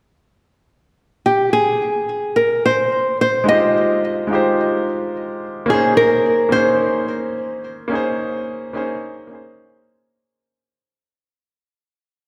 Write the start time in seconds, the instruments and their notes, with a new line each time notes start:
1.26 nylon-string guitar G4
1.53 nylon-string guitar G#4
2.36 nylon-string guitar A#4
2.66 nylon-string guitar C5
3.21 nylon-string guitar C5
3.44 grand piano G#3 D#4
3.48 grand piano F4 G4 C5, nylon-string guitar D#5
4.27 grand piano G#3 D#4 F4
4.33 grand piano G4 C5
5.66 grand piano A#3 C#4, nylon-string guitar G#4
5.70 grand piano D#4 G#4 C5
5.97 nylon-string guitar A#4
6.49 grand piano A#3 C#4 D#4, nylon-string guitar C5
6.55 grand piano G#4 C5
7.88 grand piano A#3 C#4 D#4
7.93 grand piano G#4 C5
8.73 grand piano A#3 C#4 D#4 G#4 C5
9.27 grand piano A#3 C#4 D#4
9.33 grand piano G#4 C5